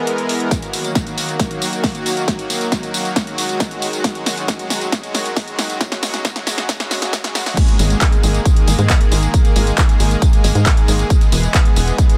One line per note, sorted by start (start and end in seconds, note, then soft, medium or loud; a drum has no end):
0.00 0.11 E3 medium
0.00 0.11 G#3 medium
0.00 0.12 B3 medium
0.00 0.12 A#4 medium
0.07 closed hi-hat medium
0.18 0.34 E3 medium
0.18 0.34 G#3 medium
0.18 0.34 B3 medium
0.18 0.34 A#4 medium
0.18 closed hi-hat soft
0.29 open hi-hat loud
0.40 0.48 E3 medium
0.40 0.48 G#3 medium
0.40 0.48 B3 medium
0.40 0.48 A#4 medium
0.40 closed hi-hat soft
0.51 0.66 D#3 medium
0.51 0.66 F#3 medium
0.51 0.67 A#3 medium
0.51 0.66 F#4 medium
0.51 kick loud
0.51 snare soft
0.51 closed hi-hat medium
0.51 tambourine soft
0.62 closed hi-hat soft
0.62 tambourine soft
0.73 0.88 D#3 medium
0.73 0.89 F#3 medium
0.73 0.89 A#3 medium
0.73 0.89 F#4 medium
0.73 open hi-hat loud
0.73 tambourine medium
0.84 closed hi-hat soft
0.84 tambourine soft
0.95 1.11 D#3 medium
0.95 1.11 F#3 medium
0.95 1.11 A#3 medium
0.95 1.11 F#4 medium
0.95 kick loud
0.95 snare medium
0.95 closed hi-hat medium
0.95 tambourine soft
1.07 closed hi-hat soft
1.07 tambourine soft
1.17 1.33 D#3 medium
1.17 1.33 F#3 medium
1.17 1.33 A#3 medium
1.17 1.33 F#4 medium
1.17 open hi-hat loud
1.17 tambourine medium
1.29 closed hi-hat soft
1.29 tambourine soft
1.39 1.47 D#3 medium
1.39 1.47 F#3 medium
1.39 1.47 A#3 medium
1.39 1.47 F#4 medium
1.39 kick loud
1.39 snare medium
1.39 closed hi-hat medium
1.39 tambourine soft
1.50 1.66 D#3 medium
1.50 1.66 F#3 medium
1.50 1.66 A#3 medium
1.50 1.66 F#4 medium
1.50 closed hi-hat medium
1.50 tambourine soft
1.62 open hi-hat loud
1.62 tambourine medium
1.72 1.88 D#3 medium
1.72 1.88 F#3 medium
1.72 1.88 A#3 medium
1.72 1.88 F#4 medium
1.72 closed hi-hat medium
1.72 tambourine soft
1.84 kick loud
1.84 snare medium
1.84 open hi-hat medium
1.84 tambourine soft
1.95 2.10 D#3 medium
1.95 2.10 F#3 medium
1.95 2.10 A#3 medium
1.95 2.10 F#4 medium
1.95 closed hi-hat soft
1.95 tambourine soft
2.06 open hi-hat loud
2.06 tambourine medium
2.17 2.25 D#3 medium
2.17 2.25 F#3 medium
2.17 2.25 A#3 medium
2.17 2.25 F#4 medium
2.17 closed hi-hat soft
2.17 tambourine soft
2.28 2.43 D#3 medium
2.28 2.43 F#3 medium
2.28 2.43 A#3 medium
2.28 2.43 F#4 medium
2.28 kick loud
2.28 snare medium
2.28 closed hi-hat medium
2.28 tambourine soft
2.39 closed hi-hat medium
2.39 tambourine soft
2.50 2.65 D#3 medium
2.50 2.65 F#3 medium
2.50 2.65 A#3 medium
2.50 2.65 F#4 medium
2.50 open hi-hat loud
2.50 tambourine medium
2.61 closed hi-hat medium
2.61 tambourine soft
2.72 2.88 D#3 medium
2.72 2.88 F#3 medium
2.72 2.88 A#3 medium
2.72 2.88 F#4 medium
2.72 kick loud
2.72 snare medium
2.72 closed hi-hat medium
2.72 tambourine soft
2.83 closed hi-hat medium
2.83 tambourine soft
2.94 3.10 D#3 medium
2.94 3.10 F#3 medium
2.94 3.10 A#3 medium
2.94 3.10 F#4 medium
2.94 open hi-hat loud
2.94 tambourine medium
3.05 closed hi-hat soft
3.05 tambourine soft
3.16 3.24 D#3 medium
3.16 3.24 F#3 medium
3.16 3.24 G#3 medium
3.16 3.24 F#4 loud
3.16 kick loud
3.16 snare medium
3.16 closed hi-hat medium
3.16 tambourine soft
3.27 3.43 D#3 medium
3.27 3.43 F#3 medium
3.27 3.43 G#3 medium
3.27 3.43 F#4 medium
3.27 closed hi-hat soft
3.27 tambourine soft
3.38 open hi-hat loud
3.38 tambourine medium
3.49 3.65 D#3 medium
3.49 3.65 F#3 medium
3.49 3.65 G#3 medium
3.49 3.65 F#4 medium
3.49 closed hi-hat medium
3.49 tambourine soft
3.60 kick loud
3.60 snare medium
3.60 closed hi-hat medium
3.60 tambourine soft
3.71 3.87 D#3 medium
3.71 3.87 F#3 medium
3.71 3.87 G#3 medium
3.71 3.87 F#4 medium
3.71 closed hi-hat soft
3.71 tambourine soft
3.82 open hi-hat loud
3.82 tambourine medium
3.93 4.01 D#3 medium
3.93 4.01 F#3 medium
3.93 4.01 G#3 medium
3.93 4.01 F#4 medium
3.93 closed hi-hat medium
3.93 tambourine soft
4.04 4.20 D#3 medium
4.04 4.20 F#3 medium
4.04 4.20 G#3 medium
4.04 4.20 F#4 medium
4.04 kick loud
4.04 snare medium
4.04 closed hi-hat loud
4.04 tambourine soft
4.15 closed hi-hat medium
4.15 tambourine soft
4.26 4.42 D#3 medium
4.26 4.42 F#3 medium
4.26 4.42 G#3 medium
4.26 4.42 F#4 medium
4.26 snare medium
4.26 open hi-hat loud
4.26 tambourine medium
4.37 closed hi-hat medium
4.37 tambourine soft
4.48 4.64 D#3 medium
4.48 4.64 F#3 medium
4.48 4.64 G#3 medium
4.48 4.64 F#4 medium
4.48 kick loud
4.48 snare medium
4.48 closed hi-hat loud
4.48 tambourine soft
4.59 closed hi-hat medium
4.59 tambourine soft
4.70 4.86 D#3 medium
4.70 4.86 F#3 medium
4.70 4.86 G#3 medium
4.70 4.86 F#4 medium
4.70 snare medium
4.70 open hi-hat loud
4.70 tambourine medium
4.81 closed hi-hat medium
4.81 tambourine soft
4.92 5.00 D#3 medium
4.92 5.00 F#3 medium
4.92 5.00 G#3 medium
4.92 5.00 F#4 medium
4.92 kick loud
4.92 snare medium
4.92 closed hi-hat loud
4.92 tambourine soft
5.03 5.19 D#3 medium
5.03 5.19 F#3 medium
5.03 5.19 G#3 medium
5.03 5.19 F#4 medium
5.03 closed hi-hat medium
5.03 tambourine soft
5.15 snare medium
5.15 open hi-hat loud
5.15 tambourine medium
5.26 5.41 D#3 medium
5.26 5.41 F#3 medium
5.26 5.41 G#3 loud
5.26 5.41 F#4 medium
5.26 closed hi-hat medium
5.26 tambourine soft
5.36 kick loud
5.36 snare medium
5.36 open hi-hat medium
5.36 tambourine soft
5.48 5.63 D#3 medium
5.48 5.63 F#3 medium
5.48 5.63 G#3 medium
5.48 5.63 F#4 medium
5.48 closed hi-hat medium
5.48 tambourine soft
5.59 snare medium
5.59 open hi-hat loud
5.59 tambourine medium
5.70 5.78 D#3 medium
5.70 5.78 F#3 medium
5.70 5.78 G#3 medium
5.70 5.78 F#4 medium
5.70 closed hi-hat medium
5.70 tambourine soft
5.81 5.96 C#3 medium
5.81 5.96 F#3 medium
5.81 5.96 G#3 medium
5.81 5.96 F#4 medium
5.81 kick loud
5.81 snare medium
5.81 closed hi-hat medium
5.81 tambourine soft
5.92 snare medium
5.92 closed hi-hat medium
5.92 tambourine soft
6.03 6.18 C#3 medium
6.03 6.18 F#3 medium
6.03 6.18 G#3 medium
6.03 6.18 F#4 medium
6.03 snare medium
6.03 open hi-hat loud
6.03 tambourine medium
6.14 snare medium
6.14 closed hi-hat medium
6.14 tambourine soft
6.25 6.40 C#3 medium
6.25 6.40 F#3 medium
6.25 6.40 G#3 loud
6.25 6.40 F#4 medium
6.25 kick loud
6.25 snare medium
6.25 closed hi-hat medium
6.25 tambourine soft
6.36 snare medium
6.36 closed hi-hat medium
6.36 tambourine soft
6.47 6.62 C#3 medium
6.47 6.62 F#3 medium
6.47 6.62 G#3 medium
6.47 6.62 F#4 medium
6.47 snare loud
6.47 open hi-hat loud
6.47 tambourine medium
6.58 snare medium
6.58 closed hi-hat medium
6.58 tambourine soft
6.69 6.77 C#3 medium
6.69 6.77 F#3 loud
6.69 6.77 G#3 medium
6.69 6.77 F#4 medium
6.69 kick loud
6.69 snare loud
6.69 closed hi-hat loud
6.69 tambourine soft
6.80 6.95 C#3 medium
6.80 6.95 F#3 medium
6.80 6.96 G#3 medium
6.80 6.95 F#4 medium
6.80 snare medium
6.80 closed hi-hat medium
6.80 tambourine soft
6.91 snare loud
6.91 open hi-hat loud
6.91 tambourine medium
7.02 7.18 C#3 medium
7.02 7.18 F#3 medium
7.02 7.18 G#3 medium
7.02 7.18 F#4 medium
7.02 snare loud
7.02 closed hi-hat medium
7.02 tambourine soft
7.13 kick loud
7.13 snare loud
7.13 closed hi-hat loud
7.13 tambourine soft
7.24 7.39 C#3 medium
7.24 7.39 F#3 medium
7.24 7.40 G#3 medium
7.24 7.39 F#4 medium
7.24 snare loud
7.24 closed hi-hat medium
7.24 tambourine soft
7.35 snare loud
7.35 open hi-hat loud
7.35 tambourine medium
7.46 7.54 C#3 medium
7.46 7.54 F#3 medium
7.46 7.54 G#3 medium
7.46 7.54 F#4 medium
7.46 snare loud
7.46 open hi-hat medium
7.46 tambourine soft
7.57 7.73 D#3 medium
7.57 7.73 G#3 medium
7.57 7.73 A#3 loud
7.57 7.73 G#4 medium
7.57 kick loud
7.57 closed hi-hat loud
7.57 crash loud
7.57 tambourine soft
7.68 closed hi-hat medium
7.68 tambourine soft
7.79 7.95 G#1 loud
7.79 7.95 D#3 medium
7.79 7.95 G#3 medium
7.79 7.95 A#3 loud
7.79 7.95 G#4 medium
7.79 open hi-hat loud
7.79 tambourine medium
7.90 closed hi-hat medium
7.90 tambourine soft
8.01 8.17 D#3 medium
8.01 8.17 G#3 medium
8.01 8.17 A#3 medium
8.01 8.17 G#4 medium
8.01 kick loud
8.01 clap loud
8.01 closed hi-hat loud
8.01 tambourine soft
8.12 closed hi-hat medium
8.12 tambourine soft
8.23 8.39 G#1 medium
8.23 8.39 D#3 medium
8.23 8.39 G#3 medium
8.23 8.39 A#3 medium
8.23 8.39 G#4 medium
8.23 open hi-hat loud
8.23 tambourine medium
8.34 closed hi-hat medium
8.34 tambourine soft
8.45 8.53 D#3 medium
8.45 8.53 G#3 medium
8.45 8.53 A#3 medium
8.45 8.53 G#4 medium
8.45 kick loud
8.45 closed hi-hat loud
8.45 tambourine soft
8.56 8.72 D#3 medium
8.56 8.72 G#3 medium
8.56 8.72 A#3 medium
8.56 8.72 G#4 medium
8.56 closed hi-hat medium
8.56 tambourine soft
8.68 8.76 G#1 medium
8.68 open hi-hat loud
8.68 tambourine medium
8.79 8.95 G#2 medium
8.79 8.94 D#3 loud
8.79 8.94 G#3 medium
8.79 8.94 A#3 medium
8.79 8.94 G#4 medium
8.79 closed hi-hat medium
8.79 tambourine soft
8.90 kick loud
8.90 clap loud
8.90 closed hi-hat loud
8.90 tambourine soft
9.01 9.16 D#3 medium
9.01 9.16 G#3 medium
9.01 9.16 A#3 loud
9.01 9.16 G#4 medium
9.01 closed hi-hat medium
9.01 tambourine soft
9.12 9.28 G#1 medium
9.12 open hi-hat loud
9.12 tambourine medium
9.23 9.31 D#3 medium
9.23 9.31 G#3 medium
9.23 9.31 A#3 medium
9.23 9.31 G#4 medium
9.23 closed hi-hat medium
9.23 tambourine soft
9.34 9.49 D#3 medium
9.34 9.49 G#3 medium
9.34 9.49 A#3 medium
9.34 9.49 G#4 medium
9.34 kick loud
9.34 closed hi-hat medium
9.34 tambourine soft
9.45 closed hi-hat medium
9.45 tambourine soft
9.56 9.72 G#1 loud
9.56 9.71 D#3 medium
9.56 9.71 G#3 medium
9.56 9.71 A#3 medium
9.56 9.71 G#4 medium
9.56 open hi-hat loud
9.56 tambourine medium
9.67 closed hi-hat medium
9.67 tambourine soft
9.78 9.93 D#3 medium
9.78 9.93 G#3 medium
9.78 9.93 A#3 medium
9.78 9.93 G#4 medium
9.78 kick loud
9.78 clap loud
9.78 closed hi-hat loud
9.78 tambourine soft
9.89 closed hi-hat medium
9.89 tambourine soft
10.00 10.16 G#1 medium
10.00 10.15 D#3 medium
10.00 10.15 G#3 medium
10.00 10.15 A#3 medium
10.00 10.15 G#4 medium
10.00 open hi-hat loud
10.00 tambourine medium
10.11 closed hi-hat medium
10.11 tambourine soft
10.22 10.30 D#3 medium
10.22 10.30 G#3 medium
10.22 10.30 A#3 medium
10.22 10.30 G#4 medium
10.22 kick loud
10.22 closed hi-hat loud
10.22 tambourine soft
10.33 10.48 D#3 medium
10.33 10.48 G#3 medium
10.33 10.48 A#3 medium
10.33 10.48 G#4 medium
10.33 closed hi-hat medium
10.33 tambourine soft
10.44 10.52 G#1 medium
10.44 open hi-hat loud
10.44 tambourine medium
10.55 10.71 G#2 medium
10.55 10.71 D#3 medium
10.55 10.70 G#3 medium
10.55 10.70 A#3 medium
10.55 10.70 G#4 medium
10.55 closed hi-hat medium
10.55 tambourine soft
10.66 kick loud
10.66 clap loud
10.66 closed hi-hat medium
10.66 tambourine soft
10.77 10.92 D#3 medium
10.77 10.93 G#3 loud
10.77 10.92 A#3 medium
10.77 10.93 G#4 medium
10.77 closed hi-hat medium
10.77 tambourine soft
10.88 11.04 G#1 medium
10.88 open hi-hat loud
10.88 tambourine medium
10.99 11.07 D#3 medium
10.99 11.07 G#3 medium
10.99 11.07 A#3 medium
10.99 11.07 G#4 medium
10.99 closed hi-hat medium
10.99 tambourine soft
11.10 11.26 E3 medium
11.10 11.26 G#3 medium
11.10 11.25 B3 medium
11.10 11.26 G#4 medium
11.10 kick loud
11.10 closed hi-hat medium
11.10 tambourine soft
11.21 closed hi-hat medium
11.21 tambourine soft
11.32 11.48 E1 medium
11.32 11.48 E3 medium
11.32 11.48 G#3 loud
11.32 11.48 B3 medium
11.32 11.48 G#4 medium
11.32 open hi-hat loud
11.32 tambourine medium
11.43 closed hi-hat medium
11.43 tambourine soft
11.54 11.70 E3 medium
11.54 11.70 G#3 medium
11.54 11.70 B3 loud
11.54 11.70 G#4 medium
11.54 kick loud
11.54 clap loud
11.54 closed hi-hat medium
11.54 tambourine soft
11.65 closed hi-hat soft
11.65 tambourine soft
11.76 11.92 E1 medium
11.76 11.92 E3 medium
11.76 11.92 G#3 medium
11.76 11.92 B3 medium
11.76 11.92 G#4 medium
11.76 open hi-hat loud
11.76 tambourine medium
11.87 closed hi-hat medium
11.87 tambourine soft
11.98 12.06 E3 medium
11.98 12.06 G#3 medium
11.98 12.06 B3 loud
11.98 12.06 G#4 medium
11.98 kick loud
11.98 closed hi-hat medium
11.98 tambourine soft
12.09 12.18 E3 medium
12.09 12.18 G#3 medium
12.09 12.18 B3 medium
12.09 12.18 G#4 medium
12.09 closed hi-hat medium
12.09 tambourine soft